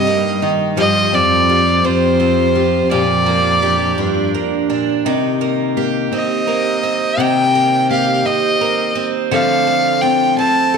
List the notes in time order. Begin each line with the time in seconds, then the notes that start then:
Already playing: G2 G3 D#4 G4 A#4 D#5
0.07 A#3
0.42 D#3 D#4
0.77 G2 F3 G4 D#5
1.12 F2 C4 D5
1.50 F4 G4
1.83 F2 C4 F4 C5
2.20 C4 F4
2.55 F4 G4
2.91 F2 A#2 F3 G4 D5
3.26 F3 A#3
3.62 D4 G4
3.98 G2 D4
4.34 A#3
4.69 A#2 D4
5.05 C3 D#3
5.41 A#3
5.77 A#3 G4
6.12 C4 D#5, muted nylon-string guitar stroke
6.47 A#3 A#4
6.83 C4
7.17 C3 D#3
7.21 G5
7.55 A#3
7.90 A#3 G4 F5
8.26 C4 D#5, muted nylon-string guitar stroke
8.61 A#3 A#4
8.95 C4
9.31 D3 F3 A3 C4 F4 A4 F5
9.67 A3
10.01 C4 F4 G5
10.38 C4 A5, muted nylon-string guitar stroke
10.74 A3 A4